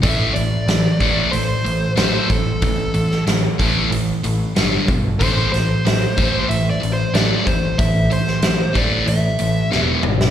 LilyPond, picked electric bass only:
\new Staff \with { instrumentName = "Picked electric bass" } { \clef bass \time 4/4 \key a \minor \tempo 4 = 93 a,,8 a,,8 a,,8 a,,8 a,,8 a,,8 a,,8 a,,8 | a,,4 a,,8 a,,8 a,,8 a,,8 g,,8 b,,8 | a,,8 a,,8 a,,8 a,,8 a,,8 a,,8 a,,8 a,,8 | a,,4 a,,8 a,,8 a,,8 a,,8 e,,8 gis,,8 | }